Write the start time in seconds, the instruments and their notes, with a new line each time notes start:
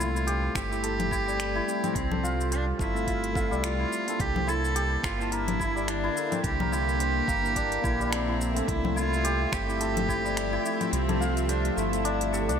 Already playing: analog synth bass C2, synth drone G3, tine electric piano A3 C4 A4 E5, santur A#3 C4 A#4 C5
0.00 santur E4, cello F4, shaker
0.16 shaker
0.27 santur G4, closed hi-hat, shaker
0.55 analog synth bass G1, santur C4, cello G4, finger snap, kick, shaker
0.69 tine electric piano A3 C4 E4 G4, shaker
0.83 santur A4, closed hi-hat, shaker
1.00 closed hi-hat, low conga
1.11 santur E4, kick, shaker
1.27 santur G3, shaker
1.40 finger snap, closed hi-hat, shaker
1.55 santur E4
1.66 tine electric piano A3 C4 E4 G4, shaker
1.83 santur C4, closed hi-hat, low conga, shaker
1.95 analog synth bass C2, cello C4, kick, closed hi-hat, shaker
2.11 santur A4, low conga
2.23 santur F4, shaker
2.41 shaker
2.51 cello D4, santur C5, closed hi-hat, shaker
2.79 analog synth bass G1, santur A3, cello E4, kick, shaker
2.94 tine electric piano A3 C4 A4 E5, shaker
3.07 santur F4, kick, closed hi-hat, shaker
3.24 closed hi-hat
3.33 tine electric piano A3 C4 E5, santur F4, kick, shaker
3.37 tine electric piano A4
3.51 analog synth bass C2, santur G3, shaker
3.64 cello F4, finger snap, closed hi-hat, shaker
3.79 santur E4
3.93 shaker
4.06 tine electric piano A#3 D4 E4, santur C4, closed hi-hat, shaker
4.10 tine electric piano A4
4.19 analog synth bass C2, synth drone D3 A#3 E5, cello G4, kick, closed hi-hat, shaker
4.35 santur C4, low conga
4.47 santur E4, cello A4, shaker
4.65 shaker
4.75 santur G4, closed hi-hat, shaker
5.04 analog synth bass G1, santur C4, cello F4, finger snap, kick, shaker
5.18 tine electric piano A#3 D4 E4, shaker
5.22 tine electric piano A5
5.31 cello E4, santur A#4, closed hi-hat, shaker
5.48 closed hi-hat, low conga
5.60 santur E4, kick, shaker
5.76 santur G3, shaker
5.88 cello D4, finger snap, closed hi-hat, shaker
6.04 santur E4
6.15 tine electric piano A#3 D4 E4 A4, shaker
6.32 santur C4, closed hi-hat, low conga, shaker
6.44 analog synth bass C2, cello G4, kick, closed hi-hat, shaker
6.60 santur A#4, low conga
6.72 santur E4, shaker
6.89 shaker
7.00 santur C5, closed hi-hat, shaker
7.28 analog synth bass G1, santur A#3, kick, shaker
7.43 tine electric piano A#3 D4 E4 A#4, shaker
7.56 santur D4, kick, closed hi-hat, shaker
7.72 closed hi-hat
7.82 analog synth bass A#1, tine electric piano A#3 D4 E4 A#4, santur E4, kick, shaker
8.00 santur G3, shaker
8.13 cello C4, finger snap, closed hi-hat, shaker
8.28 santur E4
8.41 shaker
8.54 tine electric piano A3 C4 A4 E5, santur C4, closed hi-hat, shaker
8.68 analog synth bass C2, synth drone F3 A3 G4, cello E4, kick, closed hi-hat, shaker
8.84 santur C4, low conga
8.96 santur E4, cello F4, shaker
9.13 shaker
9.24 santur G4, closed hi-hat, shaker
9.52 analog synth bass G1, santur C4, cello G4, finger snap, kick, shaker
9.66 tine electric piano A3 C4 E4, shaker
9.70 tine electric piano G4
9.81 santur A4, closed hi-hat, shaker
9.97 closed hi-hat, low conga
10.08 santur E4, kick, shaker
10.25 santur G3, shaker
10.37 finger snap, closed hi-hat, shaker
10.53 santur E4
10.64 tine electric piano A3 C4 E4 G4, shaker
10.81 santur C4, closed hi-hat, low conga, shaker
10.93 analog synth bass C2, cello C4, closed hi-hat, shaker
11.08 santur A4, closed hi-hat, low conga
11.20 santur F4, shaker
11.37 closed hi-hat, shaker
11.49 cello D4, santur C5, closed hi-hat, shaker
11.65 closed hi-hat
11.77 analog synth bass G1, santur A3, cello E4, shaker
11.92 tine electric piano A3 C4 A4 E5, closed hi-hat, shaker
12.05 santur D4, closed hi-hat, shaker
12.21 closed hi-hat
12.33 tine electric piano A3 C4 E4 G4, santur A4, shaker
12.49 analog synth bass C2, santur D4, closed hi-hat, shaker